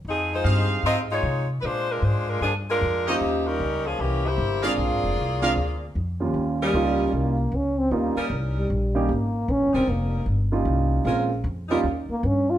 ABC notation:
X:1
M:4/4
L:1/16
Q:"Swing" 1/4=153
K:Ebmix
V:1 name="Trumpet section"
z4 [cef]6 z6 | z12 z2 [GBde]2 | z12 z2 [AB=df]2 | z6 [AB=df]2 z8 |
z16 | z16 | z16 | z16 |]
V:2 name="Saxophone section"
[F,CEA]2 [A,EFc]4 z2 [CFAe]2 [A,EFd]4 z3/2 _c/2 | [A,=DFc]2 [A,DFB]2 [A,DFc]2 [A,DFB]2 [F,B,DA]2 [A,DFB]4 [B,EGc]2- | [B,EGc]2 [G,DEB]4 [F,B,DA]2 [=E,B,DG]2 [B,=EGc]4 [B,FA=d]2- | [B,FA=d]12 z4 |
z16 | z16 | z16 | z16 |]
V:3 name="Saxophone section"
z16 | z16 | z16 | z16 |
z2 [G,DEB]6 z8 | z2 [G,DEB]6 z8 | z2 [G,DEB]6 z8 | [A,DFB]2 z4 [G,DEB]2 z8 |]
V:4 name="Grand piano"
z4 [CEGA]6 z6 | z12 z2 [G,B,DF]2- | [G,B,DF]4 z8 z2 [A,C=DF]2- | [A,C=DF]4 z2 [A,CDF]2 z6 [E,,G,B,_DF]2- |
[E,,G,B,DF]4 [G,B,DEF]6 z6 | [G,B,DEF]2 z8 [G,B,DEG]2 z4 | z8 z2 [G,B,DEF]6 | [A,B,CDF]2 z4 [G,B,DEF]2 z8 |]
V:5 name="Trombone"
z16 | z16 | z16 | z16 |
z2 G,6 B,4 D2 C2 | B,4 z2 G,6 B,4 | D2 C2 B,4 z8 | z8 z2 B,2 D2 F2 |]
V:6 name="Upright bass" clef=bass
F,,4 G,,4 A,,4 C,4 | B,,4 A,,4 G,,4 F,,4 | E,,4 D,,4 C,,4 G,,,4 | (3B,,,2 A,,,2 F,,,2 C,,4 =D,,4 F,,4 |
E,,4 D,,4 C,,4 D,,4 | E,,2 z2 C,,4 B,,,4 A,,,4 | (3B,,,2 G,,,2 E,,,2 F,,,4 G,,,4 C,,4 | B,,,4 F,,4 E,,2 z2 G,,4 |]